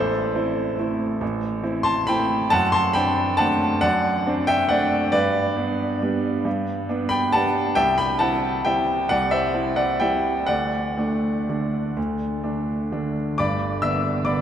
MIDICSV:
0, 0, Header, 1, 2, 480
1, 0, Start_track
1, 0, Key_signature, 1, "major"
1, 0, Tempo, 427046
1, 1369, Time_signature, 3, 2, 24, 8
1, 1839, Tempo, 436999
1, 6159, Tempo, 441826
1, 10479, Tempo, 480769
1, 14319, Tempo, 431965
1, 15455, End_track
2, 0, Start_track
2, 0, Title_t, "Grand piano"
2, 0, Program_c, 0, 0
2, 0, Note_on_c, 0, 33, 68
2, 0, Note_on_c, 0, 69, 75
2, 0, Note_on_c, 0, 72, 96
2, 113, Control_c, 0, 64, 127
2, 389, Note_off_c, 0, 33, 0
2, 392, Note_on_c, 0, 60, 53
2, 405, Note_on_c, 0, 64, 56
2, 844, Note_off_c, 0, 60, 0
2, 850, Note_off_c, 0, 64, 0
2, 879, Note_on_c, 0, 57, 48
2, 893, Note_on_c, 0, 60, 47
2, 894, Note_on_c, 0, 64, 53
2, 1317, Note_off_c, 0, 57, 0
2, 1325, Note_off_c, 0, 60, 0
2, 1325, Note_off_c, 0, 64, 0
2, 1358, Note_on_c, 0, 33, 69
2, 1387, Control_c, 0, 64, 0
2, 1560, Control_c, 0, 64, 127
2, 1797, Note_off_c, 0, 69, 0
2, 1819, Note_off_c, 0, 33, 0
2, 1833, Note_off_c, 0, 72, 0
2, 1836, Note_on_c, 0, 60, 55
2, 1837, Note_on_c, 0, 64, 56
2, 2055, Note_on_c, 0, 84, 111
2, 2068, Note_on_c, 0, 81, 90
2, 2279, Note_off_c, 0, 60, 0
2, 2280, Note_off_c, 0, 64, 0
2, 2301, Note_off_c, 0, 81, 0
2, 2313, Note_off_c, 0, 84, 0
2, 2313, Note_on_c, 0, 83, 107
2, 2330, Note_on_c, 0, 57, 50
2, 2332, Note_on_c, 0, 79, 87
2, 2335, Note_on_c, 0, 64, 56
2, 2338, Note_on_c, 0, 60, 57
2, 2765, Note_off_c, 0, 57, 0
2, 2768, Note_off_c, 0, 64, 0
2, 2769, Note_off_c, 0, 60, 0
2, 2777, Note_off_c, 0, 79, 0
2, 2791, Note_on_c, 0, 81, 127
2, 2801, Note_off_c, 0, 83, 0
2, 2809, Note_on_c, 0, 78, 93
2, 2811, Note_on_c, 0, 42, 77
2, 2826, Control_c, 0, 64, 0
2, 2996, Control_c, 0, 64, 127
2, 3027, Note_off_c, 0, 78, 0
2, 3031, Note_on_c, 0, 84, 123
2, 3035, Note_off_c, 0, 81, 0
2, 3053, Note_on_c, 0, 81, 85
2, 3265, Note_on_c, 0, 83, 109
2, 3269, Note_off_c, 0, 42, 0
2, 3270, Note_off_c, 0, 81, 0
2, 3275, Note_off_c, 0, 84, 0
2, 3277, Note_on_c, 0, 79, 91
2, 3282, Note_on_c, 0, 60, 58
2, 3290, Note_on_c, 0, 62, 62
2, 3723, Note_off_c, 0, 60, 0
2, 3727, Note_off_c, 0, 62, 0
2, 3730, Note_off_c, 0, 79, 0
2, 3744, Note_on_c, 0, 81, 111
2, 3758, Note_off_c, 0, 83, 0
2, 3758, Note_on_c, 0, 57, 53
2, 3758, Note_on_c, 0, 78, 78
2, 3768, Note_on_c, 0, 60, 55
2, 3771, Note_on_c, 0, 62, 58
2, 4197, Note_off_c, 0, 57, 0
2, 4201, Note_off_c, 0, 60, 0
2, 4203, Note_off_c, 0, 62, 0
2, 4207, Note_off_c, 0, 78, 0
2, 4226, Note_on_c, 0, 78, 113
2, 4233, Note_off_c, 0, 81, 0
2, 4237, Note_on_c, 0, 74, 86
2, 4240, Note_on_c, 0, 42, 70
2, 4265, Control_c, 0, 64, 0
2, 4453, Control_c, 0, 64, 127
2, 4709, Note_off_c, 0, 42, 0
2, 4727, Note_on_c, 0, 60, 61
2, 4727, Note_on_c, 0, 62, 65
2, 4922, Note_off_c, 0, 74, 0
2, 4953, Note_on_c, 0, 79, 123
2, 4961, Note_off_c, 0, 78, 0
2, 4963, Note_on_c, 0, 76, 86
2, 5170, Note_off_c, 0, 60, 0
2, 5170, Note_off_c, 0, 62, 0
2, 5189, Note_on_c, 0, 78, 95
2, 5193, Note_off_c, 0, 76, 0
2, 5205, Note_on_c, 0, 74, 85
2, 5206, Note_off_c, 0, 79, 0
2, 5206, Note_on_c, 0, 57, 58
2, 5209, Note_on_c, 0, 60, 50
2, 5211, Note_on_c, 0, 62, 62
2, 5642, Note_off_c, 0, 57, 0
2, 5644, Note_off_c, 0, 60, 0
2, 5645, Note_off_c, 0, 62, 0
2, 5648, Note_off_c, 0, 74, 0
2, 5665, Note_on_c, 0, 74, 105
2, 5673, Note_on_c, 0, 71, 76
2, 5674, Note_on_c, 0, 43, 77
2, 5678, Note_off_c, 0, 78, 0
2, 5708, Control_c, 0, 64, 0
2, 5911, Control_c, 0, 64, 127
2, 6137, Note_off_c, 0, 43, 0
2, 6154, Note_on_c, 0, 62, 58
2, 6157, Note_on_c, 0, 59, 56
2, 6601, Note_off_c, 0, 62, 0
2, 6602, Note_off_c, 0, 59, 0
2, 6651, Note_on_c, 0, 55, 53
2, 6654, Note_on_c, 0, 59, 47
2, 6656, Note_on_c, 0, 62, 56
2, 7084, Note_off_c, 0, 55, 0
2, 7085, Note_off_c, 0, 59, 0
2, 7086, Note_off_c, 0, 62, 0
2, 7115, Note_on_c, 0, 43, 70
2, 7143, Control_c, 0, 64, 0
2, 7328, Control_c, 0, 64, 127
2, 7546, Note_off_c, 0, 71, 0
2, 7579, Note_off_c, 0, 43, 0
2, 7586, Note_off_c, 0, 74, 0
2, 7596, Note_on_c, 0, 62, 61
2, 7600, Note_on_c, 0, 59, 57
2, 7811, Note_on_c, 0, 83, 108
2, 7827, Note_on_c, 0, 79, 85
2, 8043, Note_off_c, 0, 62, 0
2, 8045, Note_off_c, 0, 59, 0
2, 8062, Note_off_c, 0, 79, 0
2, 8066, Note_on_c, 0, 81, 109
2, 8072, Note_off_c, 0, 83, 0
2, 8076, Note_on_c, 0, 78, 79
2, 8079, Note_on_c, 0, 55, 50
2, 8081, Note_on_c, 0, 59, 50
2, 8086, Note_on_c, 0, 62, 58
2, 8511, Note_off_c, 0, 55, 0
2, 8512, Note_off_c, 0, 59, 0
2, 8514, Note_off_c, 0, 62, 0
2, 8519, Note_off_c, 0, 78, 0
2, 8532, Note_on_c, 0, 79, 119
2, 8540, Note_on_c, 0, 76, 82
2, 8541, Note_on_c, 0, 36, 71
2, 8548, Note_off_c, 0, 81, 0
2, 8577, Control_c, 0, 64, 0
2, 8763, Note_off_c, 0, 76, 0
2, 8773, Note_off_c, 0, 79, 0
2, 8774, Control_c, 0, 64, 127
2, 8775, Note_on_c, 0, 83, 103
2, 8789, Note_on_c, 0, 79, 87
2, 9003, Note_off_c, 0, 36, 0
2, 9005, Note_on_c, 0, 81, 98
2, 9010, Note_off_c, 0, 79, 0
2, 9017, Note_on_c, 0, 78, 79
2, 9019, Note_off_c, 0, 83, 0
2, 9019, Note_on_c, 0, 64, 60
2, 9022, Note_on_c, 0, 60, 53
2, 9469, Note_off_c, 0, 64, 0
2, 9470, Note_off_c, 0, 60, 0
2, 9476, Note_off_c, 0, 78, 0
2, 9501, Note_on_c, 0, 79, 100
2, 9505, Note_off_c, 0, 81, 0
2, 9509, Note_on_c, 0, 55, 47
2, 9514, Note_on_c, 0, 76, 67
2, 9517, Note_on_c, 0, 60, 50
2, 9524, Note_on_c, 0, 64, 52
2, 9948, Note_off_c, 0, 55, 0
2, 9952, Note_off_c, 0, 60, 0
2, 9956, Note_off_c, 0, 64, 0
2, 9961, Note_off_c, 0, 76, 0
2, 9986, Note_on_c, 0, 78, 105
2, 9988, Note_off_c, 0, 79, 0
2, 10001, Note_on_c, 0, 74, 80
2, 10003, Note_on_c, 0, 36, 64
2, 10015, Control_c, 0, 64, 0
2, 10188, Control_c, 0, 64, 127
2, 10219, Note_off_c, 0, 74, 0
2, 10224, Note_on_c, 0, 76, 93
2, 10229, Note_off_c, 0, 78, 0
2, 10235, Note_on_c, 0, 72, 71
2, 10468, Note_off_c, 0, 36, 0
2, 10472, Note_on_c, 0, 60, 49
2, 10482, Note_on_c, 0, 64, 54
2, 10678, Note_off_c, 0, 72, 0
2, 10695, Note_on_c, 0, 78, 88
2, 10699, Note_on_c, 0, 74, 69
2, 10705, Note_off_c, 0, 76, 0
2, 10903, Note_off_c, 0, 60, 0
2, 10908, Note_off_c, 0, 64, 0
2, 10924, Note_off_c, 0, 74, 0
2, 10929, Note_on_c, 0, 79, 92
2, 10939, Note_off_c, 0, 78, 0
2, 10941, Note_on_c, 0, 55, 46
2, 10944, Note_on_c, 0, 76, 64
2, 10947, Note_on_c, 0, 60, 41
2, 10952, Note_on_c, 0, 64, 54
2, 11380, Note_off_c, 0, 55, 0
2, 11383, Note_off_c, 0, 60, 0
2, 11386, Note_off_c, 0, 64, 0
2, 11388, Note_off_c, 0, 76, 0
2, 11397, Note_on_c, 0, 78, 91
2, 11412, Note_on_c, 0, 74, 70
2, 11414, Note_off_c, 0, 79, 0
2, 11414, Note_on_c, 0, 38, 58
2, 11442, Control_c, 0, 64, 0
2, 11627, Control_c, 0, 64, 127
2, 11891, Note_off_c, 0, 38, 0
2, 11906, Note_on_c, 0, 57, 51
2, 11913, Note_on_c, 0, 62, 51
2, 12371, Note_off_c, 0, 57, 0
2, 12374, Note_off_c, 0, 62, 0
2, 12422, Note_on_c, 0, 50, 41
2, 12426, Note_on_c, 0, 62, 46
2, 12428, Note_on_c, 0, 57, 42
2, 12861, Note_off_c, 0, 50, 0
2, 12863, Note_off_c, 0, 62, 0
2, 12864, Note_off_c, 0, 57, 0
2, 12896, Note_on_c, 0, 38, 59
2, 12917, Control_c, 0, 64, 0
2, 13091, Control_c, 0, 64, 127
2, 13351, Note_off_c, 0, 38, 0
2, 13364, Note_on_c, 0, 57, 45
2, 13364, Note_on_c, 0, 62, 54
2, 13808, Note_off_c, 0, 57, 0
2, 13808, Note_off_c, 0, 62, 0
2, 13848, Note_on_c, 0, 50, 42
2, 13851, Note_on_c, 0, 57, 45
2, 13852, Note_on_c, 0, 62, 53
2, 14046, Note_off_c, 0, 74, 0
2, 14078, Note_off_c, 0, 78, 0
2, 14277, Note_off_c, 0, 50, 0
2, 14279, Note_off_c, 0, 57, 0
2, 14279, Note_off_c, 0, 62, 0
2, 14307, Note_on_c, 0, 86, 94
2, 14321, Note_on_c, 0, 31, 55
2, 14321, Note_on_c, 0, 74, 68
2, 14323, Note_on_c, 0, 83, 71
2, 14324, Note_on_c, 0, 43, 58
2, 14336, Control_c, 0, 64, 0
2, 14503, Control_c, 0, 64, 127
2, 14764, Note_off_c, 0, 74, 0
2, 14765, Note_off_c, 0, 83, 0
2, 14783, Note_off_c, 0, 31, 0
2, 14785, Note_off_c, 0, 43, 0
2, 14790, Note_off_c, 0, 86, 0
2, 14794, Note_on_c, 0, 88, 98
2, 14801, Note_on_c, 0, 50, 43
2, 14805, Note_on_c, 0, 76, 69
2, 14812, Note_on_c, 0, 59, 47
2, 14817, Note_on_c, 0, 62, 47
2, 15237, Note_off_c, 0, 50, 0
2, 15242, Note_off_c, 0, 59, 0
2, 15245, Note_off_c, 0, 62, 0
2, 15250, Note_off_c, 0, 76, 0
2, 15270, Note_on_c, 0, 86, 86
2, 15277, Note_off_c, 0, 88, 0
2, 15279, Note_on_c, 0, 74, 65
2, 15284, Note_on_c, 0, 83, 61
2, 15286, Note_on_c, 0, 50, 41
2, 15290, Note_on_c, 0, 59, 46
2, 15293, Note_on_c, 0, 62, 49
2, 15455, Note_off_c, 0, 50, 0
2, 15455, Note_off_c, 0, 59, 0
2, 15455, Note_off_c, 0, 62, 0
2, 15455, Note_off_c, 0, 74, 0
2, 15455, Note_off_c, 0, 83, 0
2, 15455, Note_off_c, 0, 86, 0
2, 15455, End_track
0, 0, End_of_file